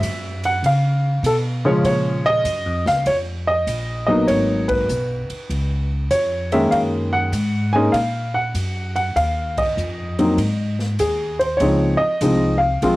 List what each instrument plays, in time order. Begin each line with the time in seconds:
Already playing: grand piano E5
0.02 upright bass F#2, hi-hat pedal, ride
0.44 grand piano F#5, ride
0.62 upright bass C#3, grand piano F5, ride
1.23 upright bass B2, grand piano A4, hi-hat pedal, ride
1.65 grand piano C#3 F3 G#3 C#4 C#5
1.84 upright bass A#2, grand piano C#5, ride
2.26 grand piano D#5
2.44 upright bass F#2, hi-hat pedal, ride
2.66 upright bass F2
2.86 upright bass C#2, grand piano F5, snare
3.06 upright bass F2, grand piano C#5, ride
3.47 grand piano D#5
3.67 upright bass A#1, hi-hat pedal, ride
4.07 grand piano F#3 A#3 B3 D#4 D#5
4.28 upright bass G#1, grand piano C#5, ride
4.68 grand piano B4, kick, ride
4.89 upright bass B1, hi-hat pedal
5.30 muted upright bass stroke, ride
5.49 upright bass C#2, ride
6.10 upright bass F2, grand piano C#5, hi-hat pedal, ride
6.52 grand piano D#3 G#3 A#3 C#4 E5, ride
6.71 upright bass F#2, grand piano F5, ride
7.13 grand piano F#5
7.32 upright bass G#2, hi-hat pedal, ride
7.73 grand piano G#3 A#3 C#4 D#4 G#5
7.92 upright bass A#2, grand piano F5, ride
8.34 grand piano F#5
8.54 upright bass F#2, hi-hat pedal, ride
8.96 grand piano F#5, ride
9.15 upright bass D#2, grand piano F5, ride
9.57 grand piano D#5, kick, ride
9.77 upright bass F2, hi-hat pedal
10.19 grand piano F#3 A#3 C4 D#4, ride
10.37 upright bass G#2, ride
10.79 snare
10.99 upright bass D#2, grand piano G#4, hi-hat pedal, ride
11.39 grand piano C5, ride
11.57 upright bass C#2, grand piano F3 G#3 C4 C#5, ride
11.61 grand piano D#4
11.97 grand piano D#5, muted upright bass stroke
12.21 upright bass C2, grand piano F3 G#3 C4 D#4, hi-hat pedal, ride
12.58 grand piano F5
12.82 upright bass A#1, grand piano F3 G#3 C4 F4, ride